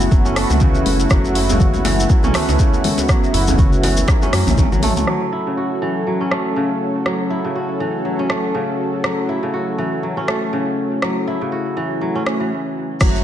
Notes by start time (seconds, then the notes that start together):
Already playing: C#3 E3 A3 B3 E4 F#4
0.00 muted conga, high conga, shekere
0.11 F#1 F#3, kick, shekere
0.25 C#4, muted conga, djembe tone, shekere
0.36 A3 B3 E4 F#4, cross-stick, open hi-hat
0.50 C#2, mid tom, djembe tone, djembe bass, low conga, shekere
0.60 C#3, kick, muted conga, shekere
0.75 low conga, shekere
0.86 F#1, open hi-hat, muted conga, high conga, djembe tone
1.00 shekere
1.10 F#1 F#3 B3 E4 F#4, kick, cross-stick, muted conga, djembe tone, low conga, shekere
1.25 shekere
1.35 E4, open hi-hat
1.49 C#3, mid tom, muted conga, djembe tone, high conga, djembe bass, shekere
1.60 F#4, kick, shekere
1.74 muted conga, djembe tone, high conga, shekere
1.85 E3, open hi-hat, djembe slap
1.99 muted conga, high conga, shekere
2.09 F#3, kick, djembe tone, shekere
2.23 B1 C#4, mid tom, muted conga, shekere
2.34 A3 B3 E4 F#4, cross-stick, open hi-hat, djembe slap, djembe tone
2.48 C#2, djembe slap, djembe bass, shekere
2.59 C#3, kick, muted conga, shekere
2.74 djembe tone, shekere
2.84 open hi-hat, muted conga, high conga, low conga
2.98 djembe slap, djembe tone, shekere
3.08 F#3 B3 E4 F#4, kick, cross-stick, muted conga, low conga, shekere
3.24 shekere
3.34 F#1 E4, open hi-hat, djembe tone
3.47 C#3, mid tom, muted conga, high conga, low conga, djembe bass, shekere
3.58 F#4, kick, djembe tone, shekere
3.72 muted conga, high conga, shekere
3.83 E3, open hi-hat, djembe slap
3.97 muted conga, high conga, djembe tone, shekere
4.08 F#3, kick, cross-stick, high tom, djembe slap, shekere
4.22 C#4, high tom, muted conga, djembe tone, shekere
4.33 F#2 F#3, cross-stick, open hi-hat
4.47 A1, mid tom, djembe bass, low conga, shekere
4.58 F#3, kick, mid tom, djembe tone, shekere
4.72 F#3, low conga, shekere
4.82 A3, mid tom, open hi-hat, muted conga, high conga, djembe tone
4.97 C#2 A3, mid tom, shekere
5.07 F#3 A3 C#4 E4 F#4 A4, cross-stick
5.32 E4
5.47 C#3
5.57 F#4
5.82 E3
6.07 F#3
6.21 C#4
6.31 A3 E4 F#4, cross-stick
6.56 C#3
7.06 F#3 A3 E4 F#4, cross-stick
7.30 E4
7.44 C#3
7.55 F#4
7.80 E3
8.05 F#3
8.19 C#4
8.30 A3 E4 F#4, cross-stick
8.54 C#3
9.04 F#3 A3 E4 F#4, cross-stick
9.29 E4
9.43 C#3
9.54 F#4
9.78 E3
10.03 F#3
10.17 C#4
10.28 A3 E4 F#4, cross-stick
10.53 C#3
11.02 F#3 A3 E4 F#4, cross-stick
11.27 E4
11.41 C#3
11.52 F#4
11.77 E3
12.01 F#3
12.15 C#4
12.26 A3 C#4 E4 F#4, cross-stick
12.40 E3
13.01 F#1 F#3 A3 C#4 E4 F#4 A4, kick, cross-stick, crash, muted conga, low conga, shekere
13.15 high conga, shekere